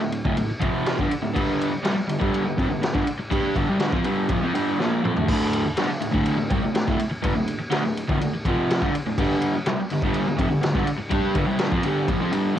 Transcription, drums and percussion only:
0.12 ride
0.25 kick
0.37 ride
0.61 kick, ride
0.86 snare, ride
0.99 kick
1.11 ride
1.36 kick, ride
1.61 ride
1.85 snare, ride
2.09 ride
2.21 kick
2.34 ride
2.58 kick, ride
2.83 snare, ride
2.95 kick
3.07 ride
3.32 kick, ride
3.56 kick, ride
3.80 snare, ride
3.93 kick
4.04 ride
4.29 kick, ride
4.55 ride
4.80 snare
5.05 mid tom
5.16 floor tom
5.28 kick, crash
5.53 ride
5.77 snare, ride
6.01 ride
6.14 kick
6.25 ride
6.50 kick, ride
6.75 snare, ride
6.88 kick
6.99 ride
7.24 kick, ride
7.48 ride
7.72 snare, ride
7.97 ride
8.09 kick
8.22 ride
8.45 kick, ride
8.71 snare, ride
8.82 kick
8.95 ride
9.18 kick, ride
9.42 ride
9.66 snare, ride
9.90 ride
10.02 kick
10.14 ride
10.39 kick, ride
10.63 snare, ride
10.75 kick
10.87 ride
11.11 kick, ride
11.35 kick, ride
11.59 snare, ride
11.72 kick
11.83 ride
12.08 kick, ride
12.33 ride

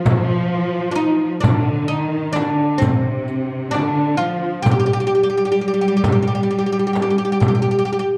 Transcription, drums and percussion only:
0.05 riq, darbuka dum, frame drum
0.98 riq
1.44 riq, frame drum, darbuka dum
2.36 riq, darbuka tek, frame drum
2.82 riq, darbuka dum, frame drum
3.28 riq, darbuka ka
3.73 riq, darbuka tek, frame drum
4.65 riq, darbuka dum, frame drum
5.58 riq, darbuka ka
6.04 riq, darbuka dum, frame drum
6.50 darbuka ka
6.96 riq, darbuka tek, frame drum
7.41 riq, darbuka dum, frame drum
7.87 riq

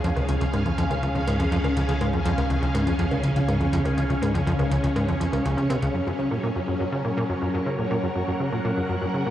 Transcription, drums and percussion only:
0.04 closed hi-hat
0.17 closed hi-hat, low bongo
0.29 closed hi-hat
0.41 closed hi-hat
0.54 closed hi-hat, low bongo
0.66 closed hi-hat
0.78 closed hi-hat
0.91 closed hi-hat, low bongo
1.03 closed hi-hat
1.15 closed hi-hat
1.27 closed hi-hat, low bongo
1.40 closed hi-hat
1.52 closed hi-hat
1.64 closed hi-hat, low bongo
1.77 closed hi-hat
1.89 closed hi-hat
2.01 closed hi-hat, low bongo
2.13 closed hi-hat
2.26 closed hi-hat
2.38 closed hi-hat, low bongo
2.50 closed hi-hat
2.63 closed hi-hat
2.75 closed hi-hat, low bongo
2.87 closed hi-hat
2.99 closed hi-hat
3.11 closed hi-hat, low bongo
3.24 closed hi-hat
3.36 closed hi-hat
3.49 closed hi-hat, low bongo
3.61 closed hi-hat
3.73 closed hi-hat
3.86 closed hi-hat, low bongo
3.98 closed hi-hat
4.10 closed hi-hat
4.23 closed hi-hat, low bongo
4.35 closed hi-hat
4.47 closed hi-hat
4.59 closed hi-hat, low bongo
4.72 closed hi-hat
4.84 closed hi-hat
4.96 closed hi-hat, low bongo
5.09 closed hi-hat
5.21 closed hi-hat
5.33 closed hi-hat, low bongo
5.46 closed hi-hat
5.58 closed hi-hat
5.70 closed hi-hat, low bongo
5.82 closed hi-hat

